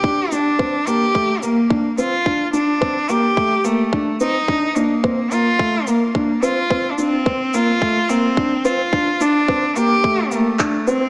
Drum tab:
SH |-x-x-x-x|-x-x-x-x|-x-x-x-x|-x-x-x-x|
CP |--------|--------|--------|--------|
BD |o-o-o-o-|o-o-o-o-|o-o-o-o-|o-o-o-o-|

SH |-x-x-x-x|
CP |------x-|
BD |o-o-o-o-|